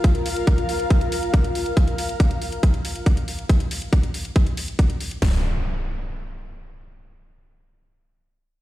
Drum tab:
HH |xxoxxxoxxxoxxxox|xxoxxxoxxxoxxxox|xxoxxxoxxxoxxxox|o---------------|
BD |o---o---o---o---|o---o---o---o---|o---o---o---o---|o---------------|

HH |----------------|
BD |----------------|